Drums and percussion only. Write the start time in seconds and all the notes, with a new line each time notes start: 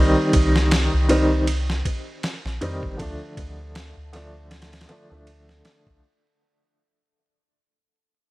0.33 kick, ride
0.56 snare
0.71 snare, ride
1.09 ride
1.47 ride
1.70 snare
1.85 kick, ride
2.23 snare, ride
2.46 snare
2.62 ride
2.83 kick
2.99 kick, ride
3.37 kick, ride
3.75 snare, ride
4.13 snare, ride
4.51 snare, ride
4.62 snare, ride
4.73 snare, ride
4.81 snare, ride
4.89 ride
5.27 ride
5.49 snare
5.65 snare, ride
5.87 kick